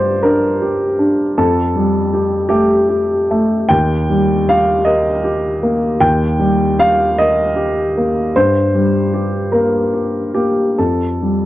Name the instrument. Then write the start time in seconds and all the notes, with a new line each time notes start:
upright piano
Already playing: G2 G3 G4 C5 D5
0.23 D4 A#4
0.62 G4
0.99 D4
1.38 F2 A4
1.75 G3
2.14 G4
2.49 A3 G4
2.89 G4
3.31 A3
3.69 D#2 G5
4.10 G3
4.49 G4 F5
4.85 A#4 D#5
5.24 G4
5.63 A#3
6.00 D#2 G5
6.39 G3
6.79 G4 F5
7.18 A#4 D#5
7.56 G4
7.97 A#3
8.36 G2 C5
8.75 G3
9.14 G4
9.52 A#3 A#4
9.94 G4
10.34 A#3 G4
10.78 F2 A4
11.22 G3